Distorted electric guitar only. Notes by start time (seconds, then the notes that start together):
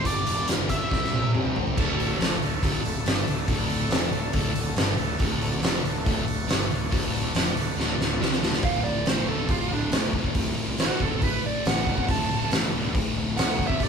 0.04 G2 D3 G3
0.26 G2 D3 G3
0.47 G2 D3 G3
0.69 G2 D3 G3
0.91 C3 G3 C4
1.13 C3 G3 C4
1.35 C3 G3 C4
1.57 C3 G3 C4
1.76 D2
2.19 F2
2.39 D2
2.62 D2
2.84 D2
3.05 G2
3.26 D2
3.48 D2
3.90 F2
4.12 D2
4.33 D2
4.54 D2
4.76 G2
4.97 D2
5.19 D2
5.63 F2
5.84 D2
6.05 D2
6.27 D2
6.47 G2
6.70 D2
6.90 D2
7.35 F2
7.56 D2
7.77 D2
7.98 D2
8.20 C3
8.40 D2
8.63 D2 A2
8.84 D2 A2
9.05 D2 B2
9.26 D2 B2
9.47 D2 A2
9.70 D2 A2
9.91 D2 B2
10.14 D2 B2
10.34 D2 A2
10.56 D2 A2
10.79 D2 B2
11.00 D2 B2
11.21 D2 A2
11.45 D2 A2
11.66 D2 B2
11.87 D2 B2
12.09 D2 A2
12.31 D2 A2
12.52 D2 B2
12.75 D2 B2
12.95 D2 A2
13.15 D2 A2
13.38 D2 B2
13.60 D2 B2
13.81 D2 A2